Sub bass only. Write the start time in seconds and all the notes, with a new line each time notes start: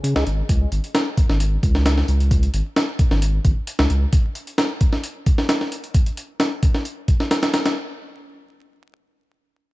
0.16 C#2
0.27 G#1
0.49 C#2
0.72 G#1
1.29 G#1
1.63 C#2
2.08 C#2
2.54 G#1
3.11 G#1
3.45 G#1
3.79 C#2
3.90 C#2